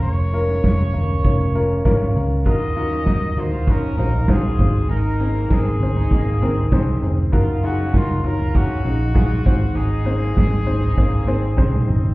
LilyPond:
<<
  \new Staff \with { instrumentName = "Trumpet" } { \time 4/4 \key aes \mixolydian \tempo 4 = 99 des''2.~ des''8 r8 | ees''4. c''8 bes'4 aes'4 | bes'4 aes'2~ aes'8 r8 | r8 ges'8 f'8 bes'8 ges'2 |
aes'2.~ aes'8 r8 | }
  \new Staff \with { instrumentName = "Upright piano" } { \time 4/4 \key aes \mixolydian <bes des' f' bes'>8 <bes des' f' bes'>8 <bes des' f' bes'>8 <bes des' f' bes'>8 <bes des' f' des''>8 <bes des' f' bes'>8 <bes des' f' bes'>8 <bes des' f' bes'>8 | <ees' f' ges' bes'>8 <ees' f' ges' bes'>8 <ees' f' ges' bes'>8 <ees' f' ges' bes'>8 <ees' f' ges' bes'>8 <ees' f' ges' c''>8 <ees' f' ges' c''>8 <c' ees' aes' c''>8~ | <c' ees' aes' c''>8 <c' ees' aes' ees''>8 <c' ees' aes' bes'>8 <c' ees' aes' c''>8 <c' ees' aes' ees''>8 <c' ees' aes' bes'>8 <c' ees' aes' c''>8 <c' ees' aes' c''>8 | <ees' f' ges' bes'>8 <ees' f' ges' aes'>8 <ees' f' ges' bes'>8 <ees' f' ges' des''>8 <ees' f' ges' aes'>8 <ees' f' ges' aes'>8 <ees' f' ges' aes'>8 <c' ees' aes' c''>8~ |
<c' ees' aes' c''>8 <c' ees' aes' c''>8 <c' ees' aes' ees''>8 <c' ees' aes' c''>8 <c' ees' aes' c''>8 <c' ees' aes' c''>8 <c' ees' aes' c''>8 <c' ees' aes' ees''>8 | }
  \new Staff \with { instrumentName = "Upright piano" } { \clef bass \time 4/4 \key aes \mixolydian r1 | ees4. r2 aes,8~ | aes,4 r2. | r2. r8 aes,8~ |
aes,4 r2. | }
  \new Staff \with { instrumentName = "Overdriven electric guitar" } { \time 4/4 \key aes \mixolydian r1 | f'8 des'8 ees'16 r8 f'16 des'8 ees'16 r16 f'8. r16 | ees'8 bes8 c'16 r8 ees'16 bes8 c'16 r4 r16 | f'8 des'8 ees'16 r8 f'16 des'8 ees'16 r16 f'8. r16 |
ees'8 bes8 c'16 r8 ees'16 bes8 c'16 r4 r16 | }
  \new Staff \with { instrumentName = "Fingered electric bass" } { \clef bass \time 4/4 \key aes \mixolydian f,,4 f,,4 f,,4 aes,,8 des,8 | ees,4 ees,4. bes,,4 aes,,8 | aes,,4 aes,,4 aes,,4 c,8 f,,8 | ges,,4 ges,,4. bes,,4 aes,,8 |
aes,,4 aes,,4 aes,,4 c,8 aes,,8 | }
  \new DrumStaff \with { instrumentName = "Drums" } \drummode { \time 4/4 hh8 hh16 sn16 <hh bd sn>8 <hh tomfh>8 <hh bd>8 hh8 <hh bd sn>8 <hh tomfh>8 | <hh bd>8 hh16 sn16 <hh bd sn>8 <hh tomfh>8 <hh bd>8 <hh tomfh>8 <hh bd sn>8 <hh bd tomfh>8 | hh8 hh8 <hh bd sn>8 <hh tomfh>8 <hh bd>8 <hh tomfh>8 <hh bd sn>8 <hh tomfh>8 | <hh bd>8 hh16 sn16 <hh bd sn>8 <hh tomfh>8 <hh bd>8 hh8 <hh bd sn>8 <hh bd tomfh>8 |
hh8 hh16 sn16 <hh bd sn>8 <hh tomfh>8 <hh bd>8 hh8 <bd sn>16 tommh16 toml16 tomfh16 | }
>>